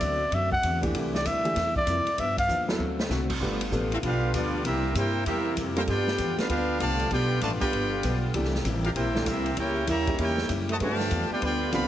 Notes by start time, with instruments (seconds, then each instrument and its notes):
Already playing: trumpet D5
0.00 upright bass D2, hollow-body jazz guitar D3 A3 C4 F#4, kick, hi-hat pedal, ride
0.31 upright bass F#2, hollow-body jazz guitar D3 A3 C4 F#4, trumpet E5, kick, ride
0.52 trumpet F#5, kick
0.63 upright bass E2, hollow-body jazz guitar D3 A3 C4 F#4, kick, hi-hat pedal, ride
0.82 grand piano E3 A3 D4 G4, kick, ride
0.94 upright bass C2, hollow-body jazz guitar C3 G3 A#3 E4, kick, ride
1.14 trumpet D5, snare
1.25 upright bass D2, hollow-body jazz guitar C3 G3 A#3 E4, trumpet E5, kick, hi-hat pedal, ride
1.44 grand piano E3 A3 D4 G4, ride
1.55 upright bass E2, hollow-body jazz guitar C3 G3 A#3 E4, kick, snare, ride
1.76 trumpet D5, kick
1.86 upright bass F2, hollow-body jazz guitar C3 G3 A#3 E4, kick, hi-hat pedal, ride
2.06 muted upright bass stroke, ride
2.17 hollow-body jazz guitar G2 F3 B3 D4, upright bass G2, trumpet E5, kick, ride
2.37 trumpet F5, kick, ride
2.48 upright bass D#2, hollow-body jazz guitar G2 F3 B3 D4, kick, hi-hat pedal
2.68 grand piano F#3 B3 E4 A4, snare
2.77 upright bass D2, hollow-body jazz guitar D3 A3 C4 F#4
2.99 snare
3.09 upright bass C2, hollow-body jazz guitar D3 A3 C4 F#4, snare, hi-hat pedal
3.30 kick, crash
3.40 upright bass G1, hollow-body jazz guitar G2 F3 B3 D4, saxophone section D3 B3 F4 G4, grand piano A3 D4 G4 B4, kick
3.61 ride
3.71 upright bass A1, hollow-body jazz guitar G2 F3 B3 D4, grand piano A3 D4 G4 A4, kick, hi-hat pedal
3.92 trumpet section C4 F4 A4 E5, trombone section E4, ride
4.02 upright bass B1, hollow-body jazz guitar G2 F3 B3 D4, trombone section B3 D4 F4, trumpet section D4 G4 B4 F5, kick, ride
4.33 upright bass D2, hollow-body jazz guitar G2 F3 B3 D4, trombone section F3 B3 D4, trumpet section B3 F4 G4 D5, kick, hi-hat pedal, ride
4.64 upright bass C2, hollow-body jazz guitar C3 G3 A#3 E4, saxophone section C3 A#3 E4, trombone section G3 A#3 E4, trumpet section C4 G4 A#4 E5, kick, ride
4.95 upright bass G2, hollow-body jazz guitar C3 G3 A#3 E4, trombone section A#3 E4 G4, trumpet section E4 A#4 C5 G5, kick, hi-hat pedal, ride
5.26 upright bass E2, hollow-body jazz guitar C3 G3 A#3 E4, trombone section G3 A#3 E4, trumpet section C4 G4 A#4 E5, kick, ride
5.56 upright bass F2, hollow-body jazz guitar C3 G3 A#3 E4, kick, hi-hat pedal, ride
5.76 grand piano G3 C4 F4 A4, trombone section A#3 E4 G4, trumpet section E4 A#4 C5 G5, ride
5.87 hollow-body jazz guitar G2 F3 B3 D4, upright bass G2, saxophone section D3 B3 F4, trombone section B3 D4 G4, trumpet section F4 B4 D5 G5, kick, ride
6.07 snare
6.18 upright bass E2, hollow-body jazz guitar G2 F3 B3 D4, kick, hi-hat pedal, ride
6.38 grand piano A3 D4 G4 B4, trombone section B3 D4 F4, trumpet section D4 G4 B4 F5, muted upright bass stroke, snare, ride
6.48 upright bass D2, hollow-body jazz guitar G2 F3 B3 D4, trombone section B3 D4 F4, trumpet section D4 G4 B4 F5, kick, ride
6.79 upright bass C2, hollow-body jazz guitar G2 F3 B3 D4, trombone section D3 F3 A3, trumpet section G4 D5 F5 A5, kick, hi-hat pedal, ride
6.99 ride
7.10 upright bass B1, hollow-body jazz guitar G2 F3 B3 D4, trombone section B3 D4 G4, trumpet section F4 B4 D5 G5, kick, ride
7.40 upright bass A1, hollow-body jazz guitar G2 F3 B3 D4, trombone section A3, trumpet section F4 B4 D5 A5, kick, hi-hat pedal, ride
7.60 trombone section B3 D4 G4, trumpet section F4 B4 D5 G5, muted upright bass stroke, kick, ride
7.71 upright bass G1, hollow-body jazz guitar G2 F3 B3 D4, kick, ride
8.03 upright bass B1, hollow-body jazz guitar G2 F3 B3 D4, kick, hi-hat pedal, ride
8.34 upright bass C2, hollow-body jazz guitar C3 G3 A#3 E4, saxophone section C3 A#3 E4, grand piano E3 A3 D4 G4, kick, ride
8.44 snare
8.55 snare
8.64 upright bass A1, hollow-body jazz guitar C3 G3 A#3 E4, kick, hi-hat pedal, ride
8.84 trumpet section D4 G4 A#4 F5, trombone section F4, ride
8.95 upright bass A#1, hollow-body jazz guitar C3 G3 A#3 E4, trombone section A#3 E4 G4, trumpet section E4 A#4 C5 G5, kick, ride
9.14 grand piano E3 A3 D4 A4, snare
9.26 upright bass C2, hollow-body jazz guitar C3 G3 A#3 E4, trombone section G3 A#3 E4, trumpet section C4 G4 A#4 E5, kick, hi-hat pedal, ride
9.46 ride
9.56 upright bass C#2, hollow-body jazz guitar C#3 G3 A#3 E4, saxophone section C#3 A#3 C#4, trombone section A#3 E4 G4, trumpet section E4 A#4 C#5 G5, kick, ride
9.87 upright bass D#2, hollow-body jazz guitar C#3 G3 A#3 E4, trombone section G3 A#3 E4, trumpet section G4 C#5 E5 A#5, kick, hi-hat pedal, ride
10.07 grand piano A#3 D#4 E4 G4, kick, ride
10.17 upright bass E2, hollow-body jazz guitar C#3 G3 A#3 E4, trombone section A#3 E4 G4, trumpet section E4 A#4 C#5 G5, kick, ride
10.38 snare
10.48 upright bass F#2, hollow-body jazz guitar C#3 G3 A#3 E4, kick, hi-hat pedal, ride
10.69 trombone section A3, trumpet section F#4 C5 D#5 A5, ride
10.79 hollow-body jazz guitar G2 F3 B3 D4, upright bass G2, saxophone section D3 G3 F4 B4, trombone section D3 F3 A3, grand piano A3 D4 G4 B4, kick, ride
10.83 trumpet section G4 D5 F5 A5
11.00 snare
11.10 upright bass E2, hollow-body jazz guitar G2 F3 B3 D4, kick, hi-hat pedal, ride
11.29 trombone section B3 D4 G4, trumpet section F4 B4 D5 G5, muted upright bass stroke
11.41 upright bass D2, hollow-body jazz guitar G2 F3 B3 D4, trombone section B3 D4 G4, trumpet section F4 B4 D5 G5, kick, ride
11.72 upright bass C2, hollow-body jazz guitar G2 F3 B3 D4, trombone section D3 F3 B3, grand piano G3 C4 F4 A4, trumpet section G4 D5 F5 B5, kick, hi-hat pedal, ride